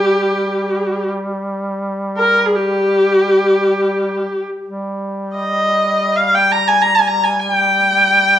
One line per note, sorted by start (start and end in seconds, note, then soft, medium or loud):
0.00 4.48 G3 soft
0.00 1.08 G4 medium
2.18 2.47 A#4 medium
2.46 2.57 G#4 soft
2.55 4.42 G4 medium
4.65 8.39 G3 soft
5.36 6.17 D#5 medium
6.16 6.36 F5 medium
6.35 6.53 G5 medium
6.52 6.69 A#5 medium
6.68 6.83 G#5 medium
6.82 6.96 A#5 medium
6.95 7.09 G#5 medium
7.07 7.25 A#5 medium
7.23 7.39 G#5 medium
7.39 7.51 G#5 medium
7.51 8.39 G5 medium